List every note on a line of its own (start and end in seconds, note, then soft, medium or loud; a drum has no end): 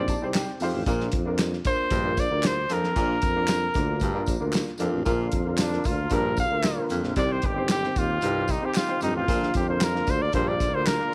0.00 0.16 A#1 loud
0.00 0.12 C4 loud
0.00 0.12 D#4 medium
0.00 0.12 G4 medium
0.00 0.13 C5 loud
0.00 0.61 D5 loud
0.08 0.33 A5 medium
0.08 kick medium
0.08 closed hi-hat medium
0.08 tambourine medium
0.21 0.44 C2 medium
0.21 0.47 C4 medium
0.21 0.47 D#4 medium
0.21 0.48 G4 medium
0.21 0.48 C5 medium
0.34 0.60 G5 medium
0.34 snare loud
0.34 clap medium
0.34 closed hi-hat medium
0.34 tambourine medium
0.60 0.81 F2 medium
0.60 0.72 F2 medium
0.60 0.78 C4 medium
0.60 0.78 D#4 medium
0.60 0.79 G4 medium
0.60 0.79 C5 loud
0.60 0.86 F5 medium
0.60 open hi-hat soft
0.60 tambourine soft
0.74 0.85 A1 medium
0.86 1.10 A#1 loud
0.86 1.07 A#2 medium
0.86 1.12 A#3 medium
0.86 1.12 D4 medium
0.86 1.13 F4 medium
0.86 1.13 A#4 loud
0.86 kick loud
0.86 closed hi-hat medium
0.86 tambourine medium
1.00 snare soft
1.12 1.59 F2 medium
1.12 kick loud
1.12 closed hi-hat medium
1.25 1.51 A#3 medium
1.25 1.51 D4 medium
1.25 1.52 F4 medium
1.25 1.52 A#4 medium
1.38 snare loud
1.38 clap medium
1.38 closed hi-hat loud
1.38 tambourine medium
1.53 snare soft
1.65 1.91 A#3 medium
1.65 1.91 D4 medium
1.65 1.91 F4 medium
1.65 1.91 A#4 medium
1.65 2.21 C5 loud
1.65 kick loud
1.65 closed hi-hat medium
1.65 tambourine soft
1.91 2.26 A#1 loud
1.91 2.12 G2 medium
1.91 kick medium
1.91 closed hi-hat medium
1.91 tambourine soft
2.04 2.22 A#3 medium
2.04 2.22 D4 medium
2.04 2.22 F4 medium
2.04 2.23 A#4 medium
2.17 2.48 D5 loud
2.17 kick medium
2.17 closed hi-hat medium
2.17 tambourine medium
2.30 2.65 D2 medium
2.30 2.56 A#3 medium
2.30 2.56 D4 medium
2.30 2.57 F4 medium
2.30 2.57 A#4 medium
2.43 2.74 C5 loud
2.43 snare loud
2.43 clap medium
2.43 closed hi-hat medium
2.43 tambourine medium
2.69 2.91 F2 medium
2.69 2.93 F2 medium
2.69 2.87 A#3 medium
2.69 2.87 D4 medium
2.69 2.88 F4 medium
2.69 2.88 A#4 medium
2.69 4.55 A#4 loud
2.69 closed hi-hat medium
2.69 tambourine soft
2.84 snare soft
2.96 3.19 A#1 medium
2.96 3.17 A#2 medium
2.96 3.22 A#3 medium
2.96 3.22 D4 medium
2.96 3.23 F4 medium
2.96 3.23 A#4 medium
2.96 kick loud
2.96 closed hi-hat medium
2.96 tambourine medium
3.21 3.69 F2 medium
3.21 kick loud
3.21 closed hi-hat medium
3.21 tambourine soft
3.35 3.61 A#3 medium
3.35 3.62 D4 medium
3.35 3.62 F4 medium
3.35 3.62 A#4 medium
3.48 snare loud
3.48 clap medium
3.48 closed hi-hat loud
3.48 tambourine medium
3.74 4.10 D2 medium
3.74 4.00 A#3 medium
3.74 4.01 D4 medium
3.74 4.01 F4 medium
3.74 4.01 A#4 medium
3.74 kick loud
3.74 closed hi-hat medium
3.74 tambourine soft
4.00 4.23 G2 medium
4.00 kick medium
4.00 closed hi-hat medium
4.00 tambourine soft
4.14 4.32 A#3 medium
4.14 4.32 D4 medium
4.14 4.32 F4 medium
4.14 4.32 A#4 loud
4.26 4.39 A#1 medium
4.26 kick medium
4.26 closed hi-hat medium
4.26 tambourine medium
4.40 4.64 D2 medium
4.40 4.66 A#3 medium
4.40 4.66 D4 medium
4.40 4.67 F4 medium
4.40 4.67 A#4 medium
4.53 snare loud
4.53 clap medium
4.53 closed hi-hat medium
4.53 tambourine medium
4.78 5.01 F2 medium
4.78 4.92 F2 loud
4.78 4.97 A#3 medium
4.78 4.97 D4 medium
4.78 4.97 F4 medium
4.78 4.98 A#4 medium
4.78 closed hi-hat medium
4.78 tambourine medium
4.94 5.05 A1 medium
5.05 5.30 A#1 loud
5.05 5.27 A#2 medium
5.05 7.15 D3 medium
5.05 5.32 A#3 medium
5.05 7.15 A#3 medium
5.05 5.32 D4 medium
5.05 5.32 F4 medium
5.05 7.15 F4 medium
5.05 5.33 A#4 medium
5.05 kick loud
5.05 closed hi-hat medium
5.05 tambourine medium
5.32 5.79 F2 loud
5.32 kick loud
5.32 closed hi-hat medium
5.46 5.63 A#3 medium
5.46 5.63 D4 medium
5.46 5.63 F4 medium
5.46 5.64 A#4 medium
5.58 5.87 D4 medium
5.58 snare loud
5.58 clap medium
5.58 closed hi-hat loud
5.58 tambourine loud
5.71 5.97 A#3 medium
5.71 5.98 D4 medium
5.71 5.98 F4 medium
5.71 5.98 A#4 medium
5.71 snare soft
5.84 6.09 D2 medium
5.84 6.15 F4 medium
5.84 kick loud
5.84 closed hi-hat medium
5.84 tambourine soft
6.10 6.52 A#1 loud
6.10 6.32 G2 medium
6.10 6.37 A#3 medium
6.10 6.37 D4 medium
6.10 6.37 F4 medium
6.10 6.38 A#4 medium
6.10 6.39 A#4 medium
6.10 kick medium
6.10 closed hi-hat medium
6.10 tambourine soft
6.37 6.88 F5 loud
6.37 kick medium
6.37 closed hi-hat medium
6.37 tambourine medium
6.51 6.74 D2 medium
6.51 6.68 A#3 medium
6.51 6.68 D4 medium
6.51 6.69 F4 medium
6.51 6.69 A#4 medium
6.63 snare loud
6.63 clap medium
6.63 closed hi-hat medium
6.63 tambourine medium
6.76 7.03 A#3 medium
6.76 7.03 D4 medium
6.76 7.03 F4 medium
6.76 7.03 A#4 medium
6.90 7.02 F2 medium
6.90 7.12 F2 medium
6.90 closed hi-hat medium
6.90 tambourine medium
7.03 7.15 A#1 medium
7.03 snare soft
7.16 7.40 C2 loud
7.16 7.38 C3 medium
7.16 9.26 D#3 medium
7.16 7.42 C4 medium
7.16 9.26 C4 medium
7.16 7.43 D#4 medium
7.16 9.26 G4 medium
7.16 7.43 G4 medium
7.16 7.43 C5 medium
7.16 7.33 D5 loud
7.16 kick medium
7.16 closed hi-hat medium
7.16 tambourine soft
7.32 7.47 C5 medium
7.42 7.90 G1 medium
7.42 7.70 G4 medium
7.42 kick medium
7.42 closed hi-hat medium
7.56 7.73 C4 medium
7.56 7.74 D#4 medium
7.56 7.74 G4 medium
7.56 7.74 C5 medium
7.68 8.00 G4 loud
7.68 snare loud
7.68 clap loud
7.68 closed hi-hat loud
7.68 tambourine medium
7.83 8.09 C4 medium
7.83 8.09 D#4 medium
7.83 8.09 G4 medium
7.83 8.10 C5 medium
7.83 snare soft
7.96 8.20 D#2 medium
7.96 8.52 F4 loud
7.96 kick loud
7.96 closed hi-hat medium
7.96 tambourine soft
8.21 8.57 C2 medium
8.21 8.44 G2 medium
8.21 8.48 C4 medium
8.21 8.48 D#4 medium
8.21 8.48 G4 medium
8.21 8.49 C5 medium
8.21 closed hi-hat medium
8.21 tambourine soft
8.48 8.67 D#4 medium
8.48 kick medium
8.48 closed hi-hat medium
8.48 tambourine medium
8.61 8.79 C4 medium
8.61 8.79 D#4 medium
8.61 8.80 G4 medium
8.61 8.79 G4 medium
8.61 8.80 C5 medium
8.74 9.02 F4 medium
8.74 snare loud
8.74 clap medium
8.74 closed hi-hat medium
8.74 tambourine medium
8.88 9.14 C4 medium
8.88 9.14 D#4 medium
8.88 9.14 G4 medium
8.88 9.15 C5 medium
9.01 9.23 F2 medium
9.01 9.13 G2 medium
9.01 9.15 D#4 loud
9.01 closed hi-hat medium
9.01 tambourine medium
9.14 9.26 A1 medium
9.14 9.52 F4 medium
9.28 9.51 A#1 loud
9.28 9.49 A#2 medium
9.28 11.14 D3 medium
9.28 9.54 A#3 medium
9.28 11.14 A#3 medium
9.28 9.54 D4 medium
9.28 9.54 F4 medium
9.28 11.14 F4 medium
9.28 9.55 A#4 medium
9.28 kick loud
9.28 closed hi-hat medium
9.28 tambourine medium
9.43 snare soft
9.54 10.01 F2 loud
9.54 9.67 G4 medium
9.54 kick loud
9.54 closed hi-hat medium
9.54 tambourine soft
9.68 9.85 A#3 medium
9.68 9.85 D4 medium
9.68 9.85 F4 medium
9.68 9.86 A#4 medium
9.68 9.85 C5 medium
9.80 10.12 A#4 loud
9.80 snare loud
9.80 clap loud
9.80 closed hi-hat loud
9.80 tambourine medium
9.94 10.20 A#3 medium
9.94 10.20 D4 medium
9.94 10.20 F4 medium
9.94 10.21 A#4 medium
9.94 snare soft
10.07 10.31 D2 loud
10.07 10.23 C5 loud
10.07 kick medium
10.07 closed hi-hat medium
10.07 tambourine medium
10.22 10.34 D5 loud
10.32 10.74 A#1 loud
10.32 10.55 G2 medium
10.32 10.59 A#3 medium
10.32 10.60 D4 medium
10.32 10.60 F4 medium
10.32 10.60 A#4 medium
10.32 10.49 C5 medium
10.32 kick medium
10.32 closed hi-hat medium
10.32 tambourine soft
10.48 10.76 D5 medium
10.60 kick loud
10.60 closed hi-hat medium
10.60 tambourine medium
10.73 10.96 D2 medium
10.73 10.90 A#3 medium
10.73 10.91 D4 medium
10.73 10.91 F4 medium
10.73 10.91 A#4 medium
10.73 10.88 C5 loud
10.86 11.14 A#4 loud
10.86 snare loud
10.86 clap medium
10.86 closed hi-hat medium
10.86 tambourine medium
10.99 11.14 A#3 medium
10.99 11.14 D4 medium
10.99 11.14 F4 medium
10.99 11.14 A#4 medium